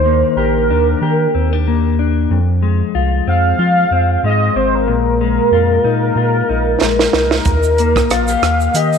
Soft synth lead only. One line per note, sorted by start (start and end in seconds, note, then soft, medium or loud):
0.00 0.36 C5 loud
0.37 1.94 A#4 medium
3.28 4.20 F5 loud
4.26 4.58 D#5 medium
4.57 4.77 C5 medium
4.75 7.14 A#4 loud
7.15 8.14 A#4 medium
8.12 8.77 F5 medium
8.76 8.98 D#5 loud